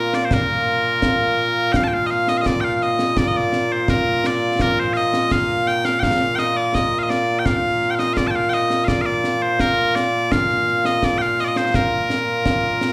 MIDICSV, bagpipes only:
0, 0, Header, 1, 2, 480
1, 0, Start_track
1, 0, Key_signature, -2, "major"
1, 0, Tempo, 714286
1, 212, Time_signature, 2, 2, 24, 8
1, 8687, End_track
2, 0, Start_track
2, 0, Title_t, "Bagpipes"
2, 0, Program_c, 0, 109
2, 0, Note_on_c, 0, 46, 89
2, 0, Note_on_c, 0, 58, 89
2, 0, Note_on_c, 0, 65, 89
2, 0, Note_on_c, 0, 70, 81
2, 97, Note_off_c, 0, 70, 0
2, 97, Note_on_c, 0, 74, 94
2, 169, Note_off_c, 0, 74, 0
2, 169, Note_on_c, 0, 72, 62
2, 222, Note_off_c, 0, 72, 0
2, 222, Note_on_c, 0, 70, 77
2, 1158, Note_off_c, 0, 70, 0
2, 1158, Note_on_c, 0, 79, 95
2, 1185, Note_off_c, 0, 79, 0
2, 1185, Note_on_c, 0, 77, 95
2, 1235, Note_off_c, 0, 77, 0
2, 1235, Note_on_c, 0, 81, 64
2, 1263, Note_off_c, 0, 81, 0
2, 1263, Note_on_c, 0, 79, 64
2, 1301, Note_off_c, 0, 79, 0
2, 1301, Note_on_c, 0, 77, 95
2, 1387, Note_off_c, 0, 77, 0
2, 1387, Note_on_c, 0, 75, 65
2, 1414, Note_off_c, 0, 75, 0
2, 1414, Note_on_c, 0, 77, 100
2, 1537, Note_off_c, 0, 77, 0
2, 1537, Note_on_c, 0, 75, 90
2, 1596, Note_off_c, 0, 75, 0
2, 1596, Note_on_c, 0, 77, 70
2, 1621, Note_off_c, 0, 77, 0
2, 1621, Note_on_c, 0, 75, 70
2, 1655, Note_off_c, 0, 75, 0
2, 1655, Note_on_c, 0, 74, 89
2, 1751, Note_off_c, 0, 74, 0
2, 1751, Note_on_c, 0, 79, 87
2, 1775, Note_off_c, 0, 79, 0
2, 1775, Note_on_c, 0, 77, 87
2, 1846, Note_off_c, 0, 77, 0
2, 1846, Note_on_c, 0, 77, 64
2, 1898, Note_off_c, 0, 77, 0
2, 1898, Note_on_c, 0, 75, 90
2, 2135, Note_off_c, 0, 75, 0
2, 2135, Note_on_c, 0, 74, 91
2, 2201, Note_off_c, 0, 74, 0
2, 2201, Note_on_c, 0, 75, 66
2, 2262, Note_off_c, 0, 75, 0
2, 2262, Note_on_c, 0, 74, 90
2, 2501, Note_off_c, 0, 74, 0
2, 2501, Note_on_c, 0, 72, 83
2, 2618, Note_off_c, 0, 72, 0
2, 2618, Note_on_c, 0, 70, 94
2, 2866, Note_off_c, 0, 70, 0
2, 2866, Note_on_c, 0, 74, 97
2, 3101, Note_off_c, 0, 74, 0
2, 3101, Note_on_c, 0, 70, 94
2, 3221, Note_off_c, 0, 70, 0
2, 3221, Note_on_c, 0, 72, 86
2, 3316, Note_off_c, 0, 72, 0
2, 3316, Note_on_c, 0, 77, 102
2, 3339, Note_off_c, 0, 77, 0
2, 3339, Note_on_c, 0, 75, 102
2, 3574, Note_off_c, 0, 75, 0
2, 3574, Note_on_c, 0, 77, 110
2, 3813, Note_off_c, 0, 77, 0
2, 3813, Note_on_c, 0, 79, 111
2, 3932, Note_off_c, 0, 79, 0
2, 3932, Note_on_c, 0, 77, 109
2, 4030, Note_off_c, 0, 77, 0
2, 4030, Note_on_c, 0, 79, 102
2, 4053, Note_off_c, 0, 79, 0
2, 4053, Note_on_c, 0, 77, 102
2, 4270, Note_off_c, 0, 77, 0
2, 4270, Note_on_c, 0, 79, 96
2, 4293, Note_off_c, 0, 79, 0
2, 4293, Note_on_c, 0, 75, 96
2, 4413, Note_off_c, 0, 75, 0
2, 4413, Note_on_c, 0, 74, 93
2, 4534, Note_off_c, 0, 74, 0
2, 4534, Note_on_c, 0, 75, 98
2, 4695, Note_off_c, 0, 75, 0
2, 4695, Note_on_c, 0, 77, 69
2, 4724, Note_off_c, 0, 77, 0
2, 4724, Note_on_c, 0, 75, 69
2, 4769, Note_off_c, 0, 75, 0
2, 4769, Note_on_c, 0, 74, 97
2, 4966, Note_off_c, 0, 74, 0
2, 4966, Note_on_c, 0, 79, 77
2, 5011, Note_off_c, 0, 79, 0
2, 5011, Note_on_c, 0, 77, 99
2, 5312, Note_off_c, 0, 77, 0
2, 5312, Note_on_c, 0, 79, 68
2, 5342, Note_off_c, 0, 79, 0
2, 5342, Note_on_c, 0, 77, 68
2, 5370, Note_off_c, 0, 77, 0
2, 5370, Note_on_c, 0, 75, 91
2, 5466, Note_off_c, 0, 75, 0
2, 5466, Note_on_c, 0, 77, 89
2, 5492, Note_off_c, 0, 77, 0
2, 5492, Note_on_c, 0, 74, 89
2, 5560, Note_off_c, 0, 74, 0
2, 5560, Note_on_c, 0, 81, 71
2, 5583, Note_off_c, 0, 81, 0
2, 5583, Note_on_c, 0, 79, 71
2, 5614, Note_off_c, 0, 79, 0
2, 5614, Note_on_c, 0, 77, 92
2, 5708, Note_off_c, 0, 77, 0
2, 5708, Note_on_c, 0, 79, 98
2, 5737, Note_off_c, 0, 79, 0
2, 5737, Note_on_c, 0, 75, 98
2, 5944, Note_off_c, 0, 75, 0
2, 5944, Note_on_c, 0, 77, 91
2, 5966, Note_off_c, 0, 77, 0
2, 5966, Note_on_c, 0, 74, 91
2, 6057, Note_off_c, 0, 74, 0
2, 6057, Note_on_c, 0, 77, 87
2, 6087, Note_off_c, 0, 77, 0
2, 6087, Note_on_c, 0, 74, 87
2, 6331, Note_off_c, 0, 74, 0
2, 6331, Note_on_c, 0, 72, 89
2, 6452, Note_off_c, 0, 72, 0
2, 6452, Note_on_c, 0, 70, 94
2, 6688, Note_off_c, 0, 70, 0
2, 6688, Note_on_c, 0, 74, 98
2, 6933, Note_off_c, 0, 74, 0
2, 6933, Note_on_c, 0, 77, 96
2, 7295, Note_off_c, 0, 77, 0
2, 7295, Note_on_c, 0, 75, 86
2, 7421, Note_off_c, 0, 75, 0
2, 7421, Note_on_c, 0, 74, 93
2, 7514, Note_off_c, 0, 74, 0
2, 7514, Note_on_c, 0, 79, 96
2, 7538, Note_off_c, 0, 79, 0
2, 7538, Note_on_c, 0, 77, 96
2, 7663, Note_off_c, 0, 77, 0
2, 7663, Note_on_c, 0, 75, 95
2, 7691, Note_off_c, 0, 75, 0
2, 7691, Note_on_c, 0, 74, 78
2, 7714, Note_off_c, 0, 74, 0
2, 7714, Note_on_c, 0, 75, 83
2, 7776, Note_off_c, 0, 75, 0
2, 7776, Note_on_c, 0, 72, 85
2, 7896, Note_off_c, 0, 72, 0
2, 7896, Note_on_c, 0, 70, 73
2, 8687, Note_off_c, 0, 46, 0
2, 8687, Note_off_c, 0, 58, 0
2, 8687, Note_off_c, 0, 65, 0
2, 8687, Note_off_c, 0, 70, 0
2, 8687, End_track
0, 0, End_of_file